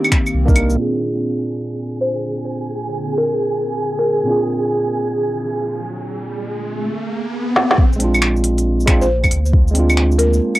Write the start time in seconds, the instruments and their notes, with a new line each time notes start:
Already playing: ambient pad D#3 A#3 C4 G4, tine electric piano D#4 G4
0.04 claves, shaker
0.12 finger snap, kick, open hi-hat
0.26 claves, shaker
0.34 sub bass C2
0.45 tine electric piano A#3 D4 D#4, kick, shaker
0.49 tine electric piano A#4
0.56 open hi-hat, claves
0.70 tine electric piano A#2, shaker
0.75 ambient pad D3, tine electric piano C4 D4, synth texture G#4
0.79 tine electric piano F4 G#4
1.64 ambient pad G#4
2.01 marimba C5
3.18 marimba A#4
3.99 marimba A#4
4.23 tine electric piano A#2 C4
4.27 tine electric piano D4 F4, riser
4.31 tine electric piano G#4
7.56 snare
7.71 snare
7.78 sub bass A#1, kick
7.93 tine electric piano G#3, shaker
7.99 tine electric piano C4 D4, open hi-hat
8.04 tine electric piano F4
8.14 ambient pad A#3, claves, shaker
8.22 finger snap
8.36 shaker
8.44 open hi-hat
8.58 open hi-hat, shaker
8.80 shaker
8.86 tine electric piano G#3 C4 D4, finger snap, kick, open hi-hat, claves
8.90 tine electric piano F4
9.01 sub bass A#1, marimba C5, shaker
9.24 kick, claves, shaker
9.31 sub bass D2, open hi-hat
9.46 shaker
9.53 kick
9.68 tine electric piano G#3, shaker
9.74 tine electric piano C4 D4, open hi-hat
9.79 tine electric piano F4
9.90 claves, shaker
9.97 finger snap
10.12 shaker
10.18 marimba A#4, open hi-hat
10.33 shaker
10.55 open hi-hat, claves, shaker